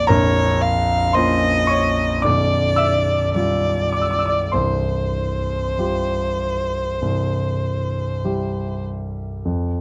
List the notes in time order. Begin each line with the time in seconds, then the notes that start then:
Already playing: A#3 D4 G4
0.07 A#0 A#1 A#4 C#5 A#5
0.62 F5
1.13 A#3 C#4 F4 C5 D#5 C6
1.67 C#5 C#6
2.22 B0 B1 D5 D6
2.76 E5 E6
3.34 G3 F4 G4 D5
3.92 D6
4.02 E6
4.11 D6
4.19 E6
4.26 D5 D6
4.52 C1 C2 C5 C6
5.79 G3 F4 G4
7.02 C1 C2
8.24 G3 E4 G4
9.45 F2